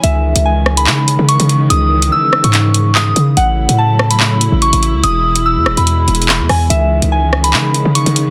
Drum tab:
HH |x--------x-----------x--------x-----x--x--x-----|x--------x-----------x--x-----x-----------x-----|x--------x-----------x--------x-----x--x--x-----|x--------x-----------x--x-----x-x-x-------o-----|
CP |------------------------x-----------------------|------------------------x-----------x-----------|------------------------x-----------------------|------------------------------------x-----------|
SD |------------------r-----------------------------|------------------r-----------------------------|------------------r-----------------------------|------------------r-----------------------r-----|

HH |x--------x-----------x--------x-----x--x--x-----|
CP |------------------------x-----------------------|
SD |------------------r-----------------------------|